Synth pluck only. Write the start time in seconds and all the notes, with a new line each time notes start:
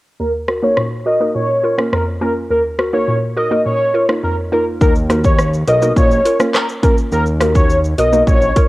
0.20 D#2
0.48 F#4 A#4
0.62 A#3 D#4 F#4 A#4
0.77 A#2
1.06 F#4 A#4
1.20 A#3 D#4 F#4 A#4
1.35 A#2
1.64 F4 A#4
1.78 A#3 C#4 F4 A#4
1.93 F2
2.21 A#3 C#4 F4 A#4
2.50 D#2
2.79 F#4 A#4
2.93 A#3 D#4 F#4 A#4
3.08 A#2
3.37 F#4 A#4
3.51 A#3 D#4 F#4 A#4
3.66 A#2
3.94 F4 A#4
4.09 A#3 D#4 F4 A#4
4.23 F2
4.52 A#3 D#4 F4 A#4
5.10 A#3 D#4 F#4 A#4
5.67 F#4 A#4
5.82 A#3 D#4 F#4 A#4
6.25 F4 A#4
6.40 A#3 C#4 F4 A#4
6.83 A#3 C#4 F4 A#4
7.40 A#3 D#4 F#4 A#4
7.98 F#4 A#4
8.13 A#3 D#4 F#4 A#4
8.56 F4 A#4